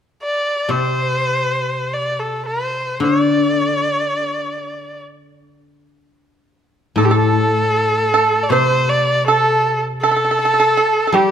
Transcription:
0.23 0.72 D5 medium
0.69 3.01 C3 soft
0.69 1.95 C5 medium
1.93 2.21 D5 medium
2.19 2.45 A4 medium
2.46 2.98 C5 medium
3.00 5.86 D3 soft
3.00 3.21 C#5 medium
3.21 5.01 D5 medium
6.96 8.51 A2 soft
6.96 7.10 A4 medium
6.96 7.06 A4 medium
7.05 7.13 G4 medium
7.11 8.10 A4 medium
7.11 8.45 A4 medium
8.14 8.50 A4 medium
8.43 8.52 D5 medium
8.50 10.76 C3 medium
8.50 8.91 C5 medium
8.50 9.24 C5 medium
8.89 9.26 D5 medium
9.27 9.80 A4 medium
9.27 9.81 A4 medium
10.01 11.16 A4 medium
10.01 10.10 A4 medium
10.11 10.15 A4 soft
10.16 10.23 A4 soft
10.25 10.30 A4 soft
10.31 10.38 A4 medium
10.39 10.44 A4 soft
10.45 10.52 A4 soft
10.54 10.58 A4 soft
10.60 10.67 A4 medium
10.77 11.06 A4 medium
11.07 11.15 A4 soft
11.12 11.31 G3 medium
11.12 11.31 G4 medium

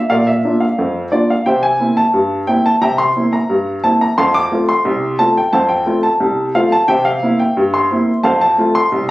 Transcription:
0.00 0.11 E5 medium
0.10 0.40 A#2 medium
0.10 0.27 A#4 medium
0.10 0.27 D5 medium
0.10 0.27 F5 medium
0.27 0.60 E5 medium
0.44 0.63 A#3 soft
0.44 0.64 D4 soft
0.44 0.64 F4 soft
0.60 1.02 F5 medium
0.79 1.08 F2 medium
1.12 1.31 A#3 soft
1.12 1.31 D4 soft
1.12 1.32 F4 soft
1.12 1.30 D5 medium
1.30 1.47 F5 medium
1.46 1.76 C3 medium
1.46 1.63 C5 medium
1.46 1.63 E5 medium
1.46 1.64 G5 medium
1.63 1.96 G#5 medium
1.80 1.99 A#3 soft
1.80 1.99 C4 medium
1.80 1.99 E4 soft
1.97 2.38 A5 medium
2.14 2.43 G2 medium
2.47 2.67 A#3 soft
2.47 2.67 C4 soft
2.47 2.67 E4 soft
2.47 2.65 G5 medium
2.66 2.83 A5 medium
2.81 3.11 C3 medium
2.81 2.99 E5 medium
2.81 2.99 G5 medium
2.81 2.99 A#5 medium
2.98 3.31 C6 medium
3.16 3.35 A#3 soft
3.16 3.35 C4 soft
3.16 3.35 E4 medium
3.33 3.74 A#5 medium
3.50 3.79 G2 medium
3.84 4.03 A#3 soft
3.84 4.03 C4 soft
3.84 4.04 E4 medium
3.84 4.01 A5 medium
4.01 4.18 A#5 medium
4.18 4.47 F2 medium
4.18 4.35 F5 medium
4.18 4.35 A5 medium
4.18 4.35 C6 medium
4.34 4.62 D6 loud
4.51 4.71 A3 soft
4.51 4.71 C4 medium
4.51 4.71 F4 medium
4.69 5.18 C6 medium
4.85 5.15 C2 medium
5.19 5.39 A3 soft
5.19 5.39 C4 soft
5.19 5.39 F4 medium
5.19 5.37 A5 medium
5.37 5.54 G5 medium
5.53 5.82 F2 medium
5.53 5.70 C5 medium
5.53 5.70 F5 medium
5.53 5.71 A5 medium
5.69 5.97 G5 medium
5.86 6.06 A3 medium
5.86 6.06 C4 medium
5.86 6.06 F4 medium
6.03 6.45 A5 medium
6.20 6.50 C2 medium
6.55 6.74 A3 soft
6.55 6.74 C4 medium
6.55 6.75 F4 medium
6.55 6.73 F5 medium
6.72 6.90 A5 medium
6.88 7.18 C3 medium
6.88 7.06 C5 medium
6.88 7.05 E5 medium
6.88 7.06 G5 loud
7.05 7.38 F5 medium
7.22 7.42 A#3 medium
7.22 7.42 C4 soft
7.22 7.42 E4 medium
7.40 7.67 G5 medium
7.57 7.86 G2 medium
7.74 8.23 C6 medium
7.91 8.10 A#3 soft
7.91 8.10 C4 medium
7.91 8.10 E4 medium
8.23 8.54 F2 medium
8.23 8.41 C5 medium
8.23 8.41 F5 medium
8.23 8.40 A5 medium
8.41 8.74 A5 medium
8.58 8.77 A3 medium
8.58 8.77 C4 medium
8.58 8.78 F4 medium
8.75 9.03 C6 medium
8.92 9.11 C2 medium

